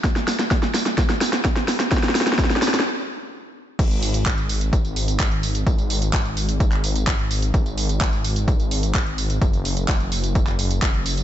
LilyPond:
<<
  \new Staff \with { instrumentName = "Detuned saw bass" } { \clef bass \time 4/4 \key fis \mixolydian \tempo 4 = 128 r1 | r1 | gis,,1 | r1 |
r1 | r1 | }
  \new DrumStaff \with { instrumentName = "Drums" } \drummode { \time 4/4 <hh bd sn tamb>16 <hh sn tamb>16 <hho sn tamb>16 <hh sn tamb>16 <hh bd sn tamb>16 <hh sn tamb>16 <hho sn tamb>16 <hh sn>16 <hh bd sn tamb>16 <hh sn tamb>16 <hho sn tamb>16 <hh sn tamb>16 <hh bd sn tamb>16 <hh sn>16 <hho sn tamb>16 <hh sn tamb>16 | <hh bd sn tamb>32 sn32 <hh sn tamb>32 sn32 <hho sn tamb>32 sn32 <hh sn tamb>32 sn32 <hh bd sn tamb>32 sn32 <hh sn tamb>32 sn32 <hho sn tamb>32 sn32 <hh sn tamb>32 sn32 r4 r4 | <cymc hh bd tamb>16 <hh tamb>16 <hho tamb>16 <hh tamb>16 <hc hh bd tamb>16 <hh tamb>16 <hho tamb>16 <hh tamb>16 <hh bd tamb>16 <hh tamb>16 <hho tamb>16 <hh tamb>16 <hc hh bd tamb>16 hh16 <hho tamb>16 <hh tamb>16 | <hh bd tamb>16 <hh tamb>16 <hho tamb>16 <hh tamb>16 <hc hh bd tamb>16 <hh tamb>16 <hho tamb>16 <hh tamb>16 <hh bd tamb>16 <hc hh tamb>16 <hho tamb>16 <hh tamb>16 <hc hh bd tamb>16 hh16 <hho tamb>16 <hh tamb>16 |
<hh bd tamb>16 <hh tamb>16 <hho tamb>16 <hh tamb>16 <hc hh bd>16 <hh tamb>16 <hho tamb>16 <hh tamb>16 <hh bd tamb>16 <hh tamb>16 <hho tamb>16 <hh tamb>16 <hc hh bd tamb>16 hh16 <hho tamb>16 <hh tamb>16 | <hh bd tamb>16 <hh tamb>16 <hho tamb>16 <hh tamb>16 <hc hh bd tamb>16 <hh tamb>16 <hho tamb>16 <hh tamb>16 <hh bd tamb>16 <hc hh tamb>16 <hho tamb>16 <hh tamb>16 <hc hh bd tamb>16 hh16 <hho tamb>16 <hh tamb>16 | }
>>